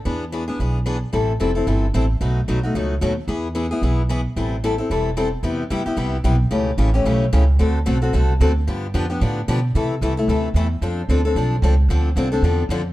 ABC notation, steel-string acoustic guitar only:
X:1
M:4/4
L:1/8
Q:"Swing" 1/4=223
K:Am
V:1 name="Steel-string acoustic guitar"
[E,B,D^G] z [E,B,DG] [B,DG] [E,B,DG] z [E,B,DG] z | [E,G,CEA] z [E,G,CEA] [CEA] [E,G,CEA] z [E,G,CEA] z | [B,,^F,A,^D^F] z [B,,F,A,DF] [A,DF] [B,,F,A,DF] z [B,,F,A,DF] z | [E,B,E^G] z [E,B,EG] [B,EG] [E,B,EG] z [E,B,EG] z |
[E,G,CEA] z [E,G,CEA] [CEA] [E,G,CEA] z [E,G,CEA] z | [K:C] [C,G,B,EG] z [C,G,B,EG] [B,EG] [C,G,B,EG] z [C,G,B,EG] z | [^C,E,A,^CG] z [C,E,A,CG] [A,CG] [C,E,A,CG] z [C,E,A,CG] z | [D,A,C^FA] z [D,A,CFA] [CFA] [D,A,CFA] z [D,A,CFA] z |
[D,F,B,DG] z [D,F,B,DG] [B,DG] [D,F,B,DG] z [D,F,B,DG] z | [C,E,A,EA] z [C,E,A,EA] [A,EA] [C,E,A,EA] z [C,E,A,EA] z | [F,CDA] z [F,CDA] [CDA] [F,CDA] z [F,CDA] z | [D,F,CDA] z [D,F,CDA] [CDA] [D,F,CDA] z [D,F,CDA] z |]